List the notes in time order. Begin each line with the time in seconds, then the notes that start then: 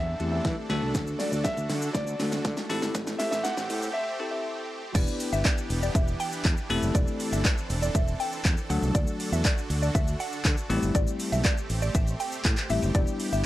Already playing: E2 E3 C4 D4 A4 E5
0.20 E2 A3 C4 E4 G4, closed hi-hat
0.31 E5
0.45 E3, kick, snare, closed hi-hat
0.69 D2 D3 A3 D4 F#4 A4, snare, closed hi-hat
0.82 C2
0.95 D2, kick, snare, closed hi-hat, shaker
1.07 shaker
1.19 D5, snare, open hi-hat, shaker
1.31 D2 D5, shaker
1.44 E5, kick, snare, closed hi-hat, shaker
1.57 D2, shaker
1.70 D3, snare, open hi-hat, shaker
1.82 shaker
1.93 D2 D5, kick, snare, closed hi-hat, shaker
2.07 shaker
2.20 D2 A3 D4 F#4 A4, snare, open hi-hat, shaker
2.31 D5, snare, shaker
2.45 D3, kick, snare, closed hi-hat, shaker
2.57 snare, shaker
2.69 A1 A3 C4 E4 G4 A4, snare, open hi-hat, shaker
2.82 G1, snare, shaker
2.95 A1, kick, snare, closed hi-hat, shaker
3.07 snare, shaker
3.19 E5, snare, open hi-hat, shaker
3.31 A1 E5, snare, shaker
3.44 F#5, snare, closed hi-hat, shaker
3.57 A1, snare, shaker
3.70 A2, open hi-hat, shaker
3.82 shaker
3.93 E5
4.20 C4 E4 G4 A4
4.31 E5
4.95 E1 E3 B3 D4 E4 G4 B4 D5, kick, closed hi-hat, crash, shaker
5.08 shaker
5.20 open hi-hat, shaker
5.33 G1 E5, shaker
5.45 D5, kick, clap, closed hi-hat, shaker
5.58 shaker
5.70 E1, open hi-hat, shaker
5.82 D5, shaker
5.95 E1 E5, kick, closed hi-hat, shaker
6.08 shaker
6.20 G5, open hi-hat, shaker
6.32 shaker
6.45 E2, kick, clap, closed hi-hat, shaker
6.57 shaker
6.70 E1 A3 C4 E4 G4 A4, open hi-hat, shaker
6.83 F#1, shaker
6.95 E1 D5, kick, closed hi-hat, shaker
7.07 shaker
7.20 open hi-hat, shaker
7.32 G1 E5, shaker
7.45 D5, kick, clap, closed hi-hat, shaker
7.58 shaker
7.70 E1, open hi-hat, shaker
7.82 D5, shaker
7.95 E1 E5, kick, closed hi-hat, shaker
8.08 shaker
8.20 G5, open hi-hat, shaker
8.32 shaker
8.45 E2, kick, clap, closed hi-hat, shaker
8.57 shaker
8.70 D2 D3 F#3 A3 D4 F#4 A4 F#5, open hi-hat, shaker
8.82 C2, shaker
8.95 D2 D5, kick, closed hi-hat, shaker
9.07 shaker
9.20 open hi-hat, shaker
9.32 E2 E5, shaker
9.45 D5, kick, clap, closed hi-hat, shaker
9.58 shaker
9.70 D2, open hi-hat, shaker
9.82 D5, shaker
9.95 D2 E5, kick, closed hi-hat, shaker
10.08 shaker
10.20 F#5, open hi-hat, shaker
10.32 shaker
10.45 D3, kick, clap, closed hi-hat, shaker
10.57 shaker
10.70 A1 G3 A3 C4 E4 G4, open hi-hat, shaker
10.82 G1, shaker
10.95 A1 D5, kick, closed hi-hat, shaker
11.07 shaker
11.20 open hi-hat, shaker
11.32 B1 E5, shaker
11.44 D5, kick, clap, closed hi-hat, shaker
11.58 shaker
11.70 A1, open hi-hat, shaker
11.82 D5, shaker
11.95 A1 E5, kick, closed hi-hat, shaker
12.07 shaker
12.20 G5, open hi-hat, shaker
12.32 shaker
12.45 A2, kick, clap, closed hi-hat, shaker
12.57 clap, shaker
12.70 A1 G3 A3 C4 E4 G4 E5, open hi-hat, shaker
12.82 F#1, shaker
12.95 E1 E3 G3 B3 D4 E4 G4 D5, kick, closed hi-hat, shaker
13.07 shaker
13.20 open hi-hat, shaker
13.33 G1 E5, shaker